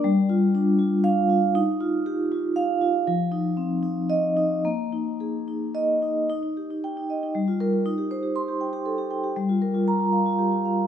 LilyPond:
\new Staff \with { instrumentName = "Vibraphone" } { \time 3/4 \key ees \major \tempo 4 = 118 << { r2 f''4 | r2 f''4 | r2 ees''4 | r2 ees''4 |
r4 g''8 r4 bes'8 | r4 c'''8 r4. | r4 bes''8 r4. | } \\ { g8 f'8 d'8 f'8. r16 f'8 | ees'8 f'8 g'8 f'8. r16 f'8 | f8 ees'8 c'8 ees'8. r16 ees'8 | bes8 ees'8 aes'8 ees'8. r16 ees'8 |
ees'16 ees'16 g'16 ees'8 ees'16 ees''16 ees'16 g16 f'8 f'16 | ees'16 g'16 c''16 g'8 g'16 g''16 g'16 a'16 g'16 g''16 g'16 | g16 f'16 bes'16 f'8 f'16 f''16 f'16 g'16 f'16 f''16 f'16 | } >> }